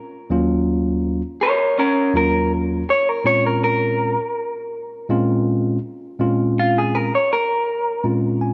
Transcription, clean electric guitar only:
1.41 A#4 C#5
1.79 C#4 A#4
2.17 A#4
2.90 C#5
3.09 A#4
3.27 C#5
3.47 A#4
3.64 A#4
6.59 F4
6.78 G#4
6.95 A#4
7.15 C#5
7.33 A#4

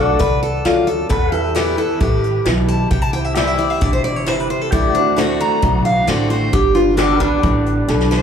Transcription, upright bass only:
Already playing: B1
0.20 C2
0.65 D2
1.10 E2
2.01 A1
2.46 B1
2.91 C2
3.82 G1
4.72 D2
5.63 B1
6.08 A1
6.53 G1
7.44 A1
7.89 B1

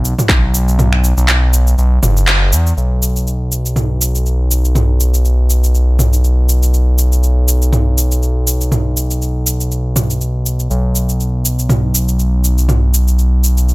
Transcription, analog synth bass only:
Already playing: B1
0.29 B1
1.17 B1
1.78 B1
2.03 F#1
2.27 F#1
2.52 E2
2.77 B1
10.70 B1

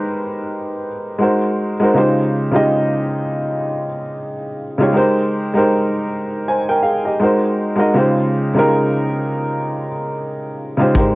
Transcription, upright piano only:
Already playing: G#3 D#4 G4 A#4 B4 C5
1.18 G#3 D#4 F#4 A#4
1.22 C5
1.80 G#3 D#4 F#4 A#4
1.84 C5
1.94 C#3 G#3 D#4 F4 G4 C5
2.51 C#3 G#3 D#4 F4 G4
2.56 D#5
4.78 C#3 G#3 D#4 F4 G4
4.82 C#5
4.93 G#3 D#4 G4 A#4
4.97 C5
5.54 G#3 D#4 G4 A#4
5.58 C5
6.48 C5 G#5
6.69 A#4 G5
6.83 G#4 F5
7.05 G4 D#5
7.20 G#3 D#4 F#4 A#4
7.24 C5
7.76 G#3 D#4 F#4 A#4
7.80 D#5
7.94 C#3 G#3 D#4 F4 G4 C5
8.55 C#3 G#3 D#4 F4 G4
8.59 A#4
10.77 C#3 G#3 D#4 F4 G4
10.82 C5
10.95 G#3 D#4 G4 A#4
10.99 C5

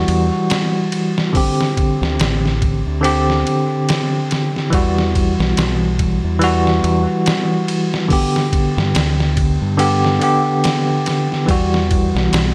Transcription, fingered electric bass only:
0.08 E2
2.02 D2
2.20 A1
2.87 D2
4.73 E2
5.39 B1
5.58 B1
6.24 E2
6.84 E2
8.77 G2
8.95 D2
9.62 G2
11.49 E2
12.15 B1
12.33 B1

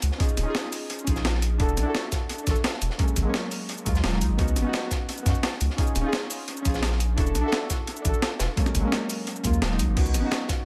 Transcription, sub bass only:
0.03 C#2
0.38 D#1
1.07 A#1
1.60 E1
1.77 B1
2.47 A1
2.82 E1
3.17 G#1
3.87 D#2
4.04 D#1
4.21 C#2
4.30 G#1
4.39 C#2
4.56 G#1
5.26 F#2
5.61 C#2
5.96 D#1
6.66 A#1
7.18 E1
7.35 B1
8.05 A1
8.40 E1
8.75 G#1
9.45 D#2
9.62 D#1
9.80 C#2
9.88 G#1
9.97 C#2
10.15 G#1

